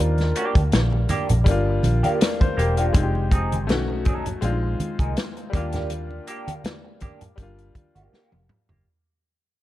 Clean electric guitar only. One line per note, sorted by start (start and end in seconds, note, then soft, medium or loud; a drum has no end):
0.36 0.57 A#3 medium
0.36 0.58 D4 medium
0.36 0.58 G4 medium
0.92 muted clean electric guitar stroke soft
1.09 1.31 A#3 medium
1.09 1.29 D4 medium
1.09 1.28 G4 medium
1.29 muted clean electric guitar stroke soft
1.47 muted clean electric guitar stroke soft
1.66 muted clean electric guitar stroke soft
2.03 2.19 A#3 medium
2.03 2.20 F4 medium
2.03 2.20 G4 medium
2.21 muted clean electric guitar stroke soft
2.40 muted clean electric guitar stroke soft
2.57 2.74 A#3 medium
2.57 2.75 F4 medium
2.57 2.75 G4 medium
2.77 2.93 A#3 soft
2.77 2.92 F4 soft
2.77 2.92 G4 medium
3.32 3.53 C4 medium
3.32 3.53 D#4 medium
3.32 3.54 G#4 medium
3.88 muted clean electric guitar stroke soft
4.05 4.27 C#4 medium
4.05 4.25 D#4 medium
4.05 4.24 A4 medium
4.25 muted clean electric guitar stroke soft
4.42 muted clean electric guitar stroke soft
4.63 muted clean electric guitar stroke soft
4.99 5.16 A#3 soft
4.99 5.16 D#4 medium
4.99 5.16 G#4 medium
5.17 muted clean electric guitar stroke soft
5.37 muted clean electric guitar stroke soft
5.54 5.71 A#3 medium
5.54 5.71 D4 medium
5.54 5.71 G4 medium
5.74 5.89 A#3 soft
5.74 5.88 D4 medium
5.74 5.88 G4 medium
6.27 6.49 A#3 medium
6.27 6.49 D4 medium
6.27 6.50 G4 medium
6.84 muted clean electric guitar stroke soft
7.01 7.23 A#3 medium
7.01 7.21 D4 medium
7.01 7.20 G4 medium
7.21 muted clean electric guitar stroke soft
7.38 muted clean electric guitar stroke soft
7.58 muted clean electric guitar stroke soft
7.95 8.11 A#3 medium
7.95 8.12 F4 medium
7.95 8.12 G4 medium
8.12 8.34 A#3 medium
8.12 8.34 F4 medium
8.12 8.34 G4 medium
8.49 muted clean electric guitar stroke soft
8.69 8.85 A#3 soft
8.69 8.84 F4 soft
8.69 8.84 G4 medium